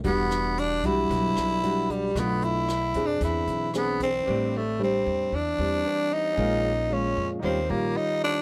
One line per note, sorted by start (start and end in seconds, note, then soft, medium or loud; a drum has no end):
0.04 0.80 E1 medium
0.04 1.07 E3 medium
0.04 0.79 G3 medium
0.04 0.60 B3 medium
0.04 0.80 D4 medium
0.04 0.80 F#4 medium
0.04 kick medium
0.04 closed hi-hat soft
0.31 cross-stick soft
0.31 closed hi-hat soft
0.57 0.87 D4 medium
0.57 closed hi-hat soft
0.84 1.08 B1 medium
0.84 1.59 G3 medium
0.84 1.59 D4 medium
0.84 1.93 E4 loud
0.84 1.60 F#4 medium
0.84 kick soft
0.84 closed hi-hat soft
1.10 1.35 B1 medium
1.10 2.13 B2 soft
1.10 kick medium
1.10 closed hi-hat soft
1.37 2.12 B1 medium
1.37 cross-stick medium
1.37 closed hi-hat soft
1.63 2.12 G3 medium
1.63 2.12 D4 soft
1.63 2.12 F#4 medium
1.63 closed hi-hat soft
1.89 2.21 G3 medium
1.89 kick soft
1.89 closed hi-hat soft
2.15 2.91 B1 medium
2.15 3.18 B2 medium
2.15 2.68 A3 medium
2.15 2.45 B3 medium
2.15 2.68 D4 soft
2.15 2.68 F4 medium
2.15 kick medium
2.15 cross-stick medium
2.15 closed hi-hat medium
2.42 3.08 E4 medium
2.42 closed hi-hat soft
2.69 cross-stick medium
2.69 closed hi-hat soft
2.94 3.19 F2 medium
2.94 3.70 C4 medium
2.94 3.70 D4 medium
2.94 3.70 G#4 medium
2.94 kick soft
2.94 closed hi-hat soft
3.07 3.23 D4 medium
3.21 3.46 E2 medium
3.21 4.24 E3 soft
3.21 3.72 E4 medium
3.21 kick medium
3.21 closed hi-hat medium
3.47 4.22 B1 medium
3.47 closed hi-hat soft
3.74 4.00 B3 medium
3.74 4.08 C4 medium
3.74 4.08 D4 soft
3.74 4.09 G#4 medium
3.74 cross-stick medium
3.74 closed hi-hat soft
4.00 4.59 C4 medium
4.00 kick soft
4.00 closed hi-hat soft
4.23 5.30 A2 medium
4.23 4.61 G3 medium
4.23 5.80 C4 soft
4.23 5.81 G4 soft
4.27 5.02 A1 medium
4.27 4.61 C4 medium
4.27 4.61 D4 medium
4.27 5.82 B4 soft
4.27 5.83 D5 medium
4.57 4.81 A3 medium
4.79 5.32 G3 medium
4.79 5.32 C4 soft
4.79 5.32 D4 medium
4.83 5.36 C4 medium
5.06 5.30 E2 medium
5.32 5.56 E2 medium
5.32 6.35 E3 medium
5.32 6.15 D4 medium
5.59 5.83 E2 medium
5.59 6.34 G3 medium
5.59 6.34 C4 medium
5.59 6.34 D4 medium
5.84 6.37 C4 soft
5.84 6.37 G4 soft
5.84 6.38 B4 soft
5.84 6.38 D5 soft
6.13 6.95 D#4 loud
6.35 7.12 A#1 medium
6.35 7.40 A#2 medium
6.35 6.72 G#3 medium
6.35 7.39 C#4 soft
6.35 6.72 C#4 medium
6.35 7.40 G#4 soft
6.35 7.41 A#4 soft
6.39 6.72 F4 medium
6.39 7.42 F5 medium
6.90 7.40 G#3 soft
6.90 7.41 C#4 soft
6.90 7.29 C#4 medium
6.90 7.41 F4 medium
7.17 7.41 F2 medium
7.39 7.67 D#2 medium
7.39 8.42 D#3 medium
7.39 7.58 G3 soft
7.39 8.42 D#4 soft
7.39 8.42 G4 soft
7.39 8.42 C#5 soft
7.44 7.72 C4 medium
7.44 7.59 C#4 soft
7.44 7.59 F4 medium
7.44 8.42 F5 soft
7.70 7.94 A#1 medium
7.70 8.42 G3 medium
7.70 7.98 A#3 medium
7.70 8.42 C#4 medium
7.70 8.42 F4 medium
7.97 8.22 D#4 medium
8.24 8.42 D4 medium